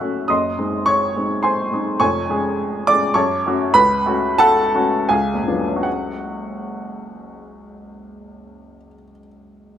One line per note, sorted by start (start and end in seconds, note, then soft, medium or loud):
0.00 0.29 F#1 medium
0.00 0.30 F#2 medium
0.00 0.32 A3 soft
0.00 0.31 C#4 soft
0.00 0.32 F#4 soft
0.00 0.31 C#5 medium
0.00 0.32 E5 medium
0.00 0.25 F#5 medium
0.00 0.31 A5 medium
0.00 0.32 C#6 medium
0.00 0.31 E6 medium
0.00 0.28 F#6 medium
0.28 0.57 F#1 medium
0.28 0.58 F#2 medium
0.28 0.83 D#5 medium
0.28 0.83 C6 medium
0.28 0.86 D#6 medium
0.59 1.12 G#3 medium
0.59 1.12 C4 soft
0.59 1.12 D#4 medium
0.86 1.40 C#5 medium
0.86 1.44 C#6 loud
1.16 1.69 G#3 soft
1.16 1.70 C4 soft
1.16 1.70 D#4 soft
1.43 1.98 C5 medium
1.43 1.97 G#5 medium
1.43 2.01 C6 medium
1.72 1.98 G#3 medium
1.72 1.99 C4 soft
1.72 1.99 D#4 medium
2.00 2.28 F1 medium
2.00 2.29 F2 medium
2.00 2.82 C#5 medium
2.00 2.82 G#5 medium
2.00 2.85 C#6 loud
2.30 2.82 G#3 medium
2.30 2.83 C#4 medium
2.30 2.83 G#4 medium
2.87 3.14 G#3 medium
2.87 3.14 C#4 medium
2.87 3.14 G#4 medium
2.87 3.14 D5 medium
2.87 3.16 D6 loud
3.14 3.44 F#2 medium
3.14 3.72 C#5 medium
3.14 3.72 A5 medium
3.14 3.75 C#6 loud
3.46 3.73 A3 medium
3.46 3.74 C#4 medium
3.46 3.74 F#4 medium
3.74 4.05 C#2 medium
3.74 4.35 B4 loud
3.74 4.39 B5 loud
4.06 4.70 A3 medium
4.06 4.70 C#4 medium
4.06 4.70 F#4 medium
4.38 5.06 A4 loud
4.38 5.06 F#5 medium
4.38 5.09 A5 loud
4.74 5.06 A3 medium
4.74 5.07 C#4 medium
4.74 5.07 F#4 medium
5.09 5.41 C#2 medium
5.09 5.81 G#4 medium
5.09 5.81 F5 medium
5.09 5.85 G#5 medium
5.34 8.77 F#1 medium
5.42 8.85 C#2 medium
5.47 8.94 F#3 soft
5.47 5.81 B3 medium
5.47 5.81 D4 medium
5.47 5.82 F4 medium
5.59 9.02 A3 medium
5.68 9.11 C#4 medium
5.76 9.19 F#4 medium
5.83 9.26 F#5 medium